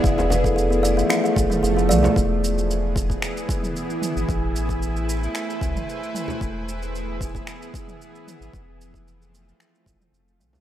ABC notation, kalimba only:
X:1
M:4/4
L:1/16
Q:1/4=113
K:none
V:1 name="Kalimba"
E ^G B A G B, d E E G G E G E d E | z16 | z16 | z16 |
z16 |]